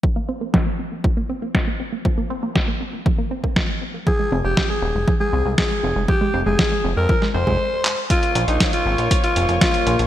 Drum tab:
HH |----------------|----------------|----------------|----------------|
CP |----------------|----------------|----------------|--------------x-|
SD |----o-------o---|----o-------o---|----o-------o---|----o----o------|
BD |o---o---o---o---|o---o---o--oo---|o---o---o---o---|o---o---o--o----|

HH |xxxxxx-xxxxxxxxx|
CP |----------------|
SD |----o-------o---|
BD |o---o---o---o---|